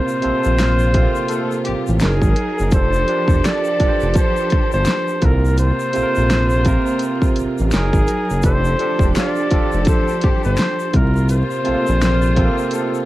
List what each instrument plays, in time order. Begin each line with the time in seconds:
Already playing: string section A#2 C3 F4, tine electric piano C3 C4 F4 A#4, flugelhorn C5
0.08 shaker
0.22 analog synth bass A#1, tine electric piano C3 C4 F4 C5, horn section A3 F4 A4, closed hi-hat
0.44 analog synth bass A#1, shaker
0.58 horn section C3 F3 A#3 F4, finger snap, snare, closed hi-hat, shaker
0.79 shaker
0.93 tine electric piano C3 C4 F4 A4, horn section C3 F3 A#3 F4, kick, closed hi-hat
1.03 tine electric piano A#3
1.15 shaker
1.28 horn section A3 F4 A4, closed hi-hat, shaker
1.51 shaker
1.65 analog synth bass A1, horn section C3 G3 A#3 G4, closed hi-hat
1.87 analog synth bass A1, shaker
2.00 string section F#3 D#4 G#4 A#4, tine electric piano F#3 D#4 G#4 A#4, flugelhorn G#4, finger snap, snare, closed hi-hat, shaker
2.04 analog synth bass F#1
2.22 analog synth bass G#1, kick, shaker
2.36 closed hi-hat
2.59 analog synth bass F#1, shaker
2.71 analog synth bass F1, string section F3 D4 G4 A4, tine electric piano F3 D4 G4, flugelhorn C5, kick, closed hi-hat, shaker
2.76 tine electric piano A4
2.93 shaker
3.07 tine electric piano F3 D4 G4 A#4, closed hi-hat
3.17 tine electric piano C5
3.28 analog synth bass E1, kick, shaker
3.44 flugelhorn D5, finger snap, snare, closed hi-hat, shaker
3.64 shaker
3.79 analog synth bass F1, tine electric piano F3 D4 G4 B4, kick, closed hi-hat
3.89 tine electric piano C5
4.00 analog synth bass F1, shaker
4.14 flugelhorn C5, kick, closed hi-hat, shaker
4.36 shaker
4.50 analog synth bass G1, kick, closed hi-hat
4.72 analog synth bass G1, flugelhorn C5, shaker
4.85 finger snap, snare, closed hi-hat, shaker
5.08 shaker
5.22 analog synth bass C2, tine electric piano C3 C4 F4 A4, string section C3 A#3 F4, flugelhorn A#4, kick, closed hi-hat
5.31 tine electric piano A#4
5.45 shaker
5.58 flugelhorn C5, closed hi-hat, shaker
5.80 shaker
5.93 analog synth bass A#1, tine electric piano C3 C4 F4 A4, closed hi-hat, shaker
6.03 tine electric piano A#4
6.15 analog synth bass A#1, shaker
6.30 finger snap, snare, closed hi-hat, shaker
6.50 shaker
6.65 tine electric piano C3 C4 F4 A#4, kick, closed hi-hat, shaker
6.87 shaker
6.99 closed hi-hat, shaker
7.22 kick, shaker
7.36 analog synth bass A1, closed hi-hat, shaker
7.58 analog synth bass A1, shaker
7.71 analog synth bass F#1, tine electric piano F#3 D#4 G#4 A#4, string section F#3 D#4 G#4 A#4, flugelhorn G#4, finger snap, snare, closed hi-hat, shaker
7.93 analog synth bass G#1, kick, shaker
8.07 closed hi-hat, shaker
8.30 analog synth bass F#1, shaker
8.42 analog synth bass F1, tine electric piano F3 D4 G4, string section F3 D4 G4 A4, flugelhorn C5, kick, closed hi-hat, shaker
8.46 tine electric piano A4
8.65 shaker
8.79 horn section D3 A3 C4 A4, tine electric piano F3 D4 G4 C5, closed hi-hat
8.99 analog synth bass E1, kick, shaker
9.15 horn section D3 F3 C4 F4, flugelhorn D5, finger snap, snare, closed hi-hat, shaker
9.36 shaker
9.50 analog synth bass F1, horn section D3 F3 C4 F4, tine electric piano F3 D4 G4 A4, kick, closed hi-hat
9.72 analog synth bass F1, shaker
9.85 horn section D3 A3 C4 A4, flugelhorn C5, kick, closed hi-hat, shaker
10.08 shaker
10.21 analog synth bass G1, horn section D3 G3 C4 G4, kick, closed hi-hat
10.44 analog synth bass G1, flugelhorn C5, shaker
10.57 finger snap, snare, closed hi-hat, shaker
10.80 shaker
10.93 analog synth bass C2, string section A#2 C3 F4, tine electric piano C3 C4 E4 A#4, flugelhorn A#4, kick, closed hi-hat
11.02 tine electric piano F4
11.16 shaker
11.29 flugelhorn C5, closed hi-hat, shaker
11.51 shaker
11.64 analog synth bass A#1, tine electric piano C3 C4 F4 A4, horn section A3 F4 A4, closed hi-hat
11.74 tine electric piano A#3
11.87 analog synth bass A#1, shaker
12.01 horn section C3 F3 A#3 F4, finger snap, snare, closed hi-hat, shaker
12.22 shaker
12.36 tine electric piano C3 C4 F4 A4, horn section C3 F3 A#3 F4, kick, closed hi-hat
12.45 tine electric piano A#3
12.58 shaker
12.71 horn section A3 F4 A4, closed hi-hat, shaker
12.94 shaker